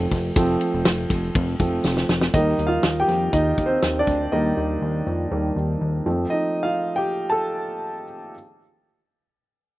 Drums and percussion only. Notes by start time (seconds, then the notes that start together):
0.11 kick, open hi-hat, ride, tambourine
0.36 kick, hi-hat pedal, ride, tambourine
0.60 ride, tambourine
0.85 snare, ride, tambourine
1.10 kick, ride, tambourine
1.35 kick, ride
1.59 kick, ride, tambourine
1.84 snare, tambourine
1.97 snare
2.09 snare, tambourine
2.21 snare
2.34 kick, closed hi-hat
2.59 closed hi-hat
2.83 snare, closed hi-hat
3.08 closed hi-hat
3.33 kick, closed hi-hat
3.58 kick, closed hi-hat
3.82 snare, closed hi-hat
4.07 kick, closed hi-hat